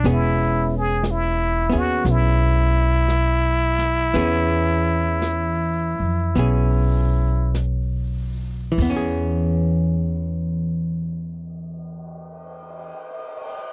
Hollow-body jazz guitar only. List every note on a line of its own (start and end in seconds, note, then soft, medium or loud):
0.05 1.68 B3 soft
0.05 1.71 C#4 soft
0.05 1.72 G#4 soft
1.70 4.13 B3 soft
1.70 4.14 C#4 soft
1.70 4.15 G#4 soft
4.14 8.71 E3 medium
4.14 6.34 B3 soft
4.14 6.37 C#4 soft
4.14 6.38 G#4 medium
6.36 8.78 B3 soft
6.36 8.80 C#4 soft
6.36 8.80 G#4 soft
8.72 12.89 E3 soft
8.82 12.99 B3 medium
8.90 13.07 C#4 medium
8.96 13.14 G#4 medium